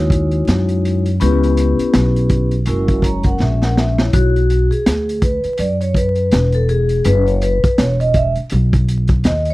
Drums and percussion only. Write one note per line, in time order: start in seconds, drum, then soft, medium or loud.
0.10 kick medium
0.10 closed hi-hat medium
0.31 closed hi-hat soft
0.47 snare medium
0.47 closed hi-hat medium
0.69 closed hi-hat medium
0.85 closed hi-hat medium
1.06 closed hi-hat medium
1.21 closed hi-hat medium
1.43 closed hi-hat soft
1.57 closed hi-hat medium
1.79 closed hi-hat soft
1.94 snare loud
1.94 closed hi-hat medium
2.16 closed hi-hat medium
2.29 kick loud
2.29 closed hi-hat medium
2.51 closed hi-hat soft
2.66 closed hi-hat medium
2.88 kick medium
2.88 closed hi-hat soft
3.02 kick medium
3.02 closed hi-hat medium
3.23 kick medium
3.23 closed hi-hat soft
3.40 snare medium
3.62 snare medium
3.77 snare medium
3.98 snare medium
4.13 kick loud
4.13 closed hi-hat medium
4.36 closed hi-hat soft
4.50 closed hi-hat medium
4.72 closed hi-hat soft
4.86 snare loud
4.86 closed hi-hat medium
5.09 closed hi-hat medium
5.22 kick loud
5.22 closed hi-hat medium
5.44 closed hi-hat soft
5.58 closed hi-hat medium
5.81 closed hi-hat medium
5.94 kick medium
5.94 closed hi-hat medium
6.15 closed hi-hat soft
6.31 snare medium
6.31 closed hi-hat medium
6.52 closed hi-hat soft
6.69 closed hi-hat medium
6.89 closed hi-hat medium
7.04 closed hi-hat medium
7.28 closed hi-hat soft
7.42 closed hi-hat medium
7.64 kick loud
7.64 closed hi-hat medium
7.78 snare loud
7.78 closed hi-hat medium
8.01 closed hi-hat medium
8.14 kick medium
8.14 closed hi-hat medium
8.35 closed hi-hat soft
8.50 closed hi-hat medium
8.73 kick medium
8.73 closed hi-hat medium
8.89 closed hi-hat medium
9.08 kick loud
9.08 closed hi-hat soft
9.24 snare medium
9.24 closed hi-hat medium
9.45 closed hi-hat soft